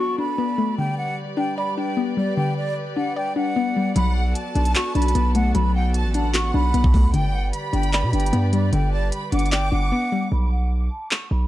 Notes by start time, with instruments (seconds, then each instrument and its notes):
Already playing: synth pluck F#3 D4, string section B3 F#4 A4 D5, downlifter
0.00 synth pluck F#4, flute C#6
0.18 synth pluck D4, flute B5
0.38 synth pluck B3
0.58 synth pluck A3
0.78 synth pluck D3, string section G3 G4 B4, flute G5
0.98 flute F#5
1.37 synth pluck D4, flute G5
1.58 synth pluck D5, flute B5
1.78 synth pluck D4, flute G5
1.97 synth pluck B3
2.17 synth pluck G3, flute D5
2.37 synth pluck D3, flute G5
2.57 flute D5
2.97 synth pluck D4, flute F#5
3.16 synth pluck D5, flute G5
3.36 synth pluck D4, flute F#5
3.56 synth pluck B3
3.76 synth pluck G3
3.96 808-style bass B1, synth pluck F#3, string section B3 F#4 A4, violin section F#5, flute B5, closed hi-hat
4.16 flute F#5
4.35 violin section A5, closed hi-hat
4.55 808-style bass B1, synth pluck D4, flute A5, closed hi-hat
4.65 closed hi-hat
4.75 synth pluck F#4, flute C#6, clap, closed hi-hat
4.95 808-style bass B1, synth pluck D4, flute B5, closed hi-hat
5.02 closed hi-hat
5.08 closed hi-hat
5.15 808-style bass B1, synth pluck B3, closed hi-hat
5.35 synth pluck A3, flute F#5, closed hi-hat
5.55 808-style bass B1, synth pluck F#3, flute B5, closed hi-hat
5.75 flute F#5, violin section G5
5.94 violin section A5, closed hi-hat
6.05 808-style bass A1
6.14 synth pluck D4, violin section F#5, flute A5, closed hi-hat
6.34 synth pluck F#4, flute C#6, clap, closed hi-hat
6.54 808-style bass B1, synth pluck D4, flute B5
6.74 808-style bass B1, synth pluck B3, closed hi-hat
6.84 kick
6.94 synth pluck A3, kick, open hi-hat
7.04 808-style bass D2
7.14 808-style bass G1, synth pluck D3, string section G3 G4 B4 D5, flute G5, violin section G5, closed hi-hat
7.33 flute F#5
7.53 violin section B5, closed hi-hat
7.73 808-style bass G1, synth pluck D4, flute G5, closed hi-hat
7.83 closed hi-hat
7.93 synth pluck D5, flute B5, clap, closed hi-hat
8.03 808-style bass B2
8.13 808-style bass G1, synth pluck D4, flute G5, closed hi-hat
8.20 closed hi-hat
8.26 closed hi-hat
8.33 808-style bass G2, synth pluck B3, closed hi-hat
8.53 synth pluck G3, flute D5, closed hi-hat
8.73 808-style bass G1, synth pluck D3, flute G5, closed hi-hat
8.92 flute D5, violin section A5
9.12 violin section B5, closed hi-hat
9.32 808-style bass G1, synth pluck D4, flute F#5, violin section D6, closed hi-hat
9.39 closed hi-hat
9.46 closed hi-hat
9.52 synth pluck D5, flute G5, clap, closed hi-hat
9.72 808-style bass G1, synth pluck D4, flute F#5
9.92 synth pluck B3
10.12 synth pluck G3
10.32 808-style bass B1, flute B5
10.52 flute F#5
10.91 flute A5
11.11 flute C#6, clap
11.31 808-style bass B1, flute B5